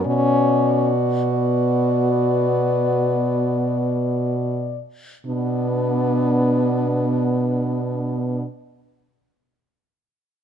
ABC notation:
X:1
M:4/4
L:1/8
Q:1/4=46
K:Bm
V:1 name="French horn"
d2 d4- d z | D8 |]
V:2 name="French horn"
F6- F z | D8 |]
V:3 name="French horn"
C z B,4- B, z | B,8 |]
V:4 name="French horn" clef=bass
B,,6- B,, z | B,,8 |]